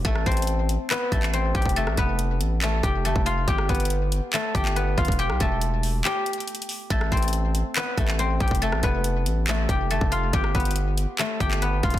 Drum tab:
HH |x-----------x--x--x--x--x-----------x-----------x-----------x-----------x-----------x---x---x---|x-----------x-----------x-----------x-----------x-----------x-----------x-----------x-----------|x-----------x--x--x--x--x-----------x-----------x-----------x-----------x-----------x---x---x---|x-----------x-----------x-----------o-----------x-----------x---x---x---x---x---x---o-----------|
CP |------------------------------------------------x-----------------x-----------------------------|------------------------------------------------x-----------------------------------------------|------------------------------------------------x-----------------x-----------------------------|------------------------------------------------x-----------------------------------------------|
SD |------r-----------------------------------------------------------------------------------------|------r-----------------------------------------------------------------------------------------|------r-----------------------------------------------------------------------------------------|------r-----------------------------------------------------------------------------------------|
BD |o-----------o-----------------------------------------------o-----------------------o-----o-----|------------o-----------------------------------------------o-----------------o-----------------|o-----------o-----------------------------------------------o-----------------------o-----o-----|------------o-----------------------------------------------------------------------------------|

HH |x-----------x--x--x--x--x-----------x-----------x-----------x-----------x-----------x---x---x---|x-----------x-----------x-----------x-----------x-----------x-----------x-----------x-----------|x-----------x--x--x--x--x-----------x-----------x-----------x-----------x-----------x---x-------|
CP |------------------------------------------------x-----------------x-----------------------------|------------------------------------------------x-----------------------------------------------|------------------------------------------------x-----------------x-----------------------------|
SD |------r-----------------------------------------------------------------------------------------|------r-----------------------------------------------------------------------------------------|------r-----------------------------------------------------------------------------------------|
BD |o-----------o-----------------------------------------------o-----------------------o-----o-----|------------o-----------------------------------------------o-----------------o-----------------|o-----------o-----------------------------------------------o-----------------------o-----o-----|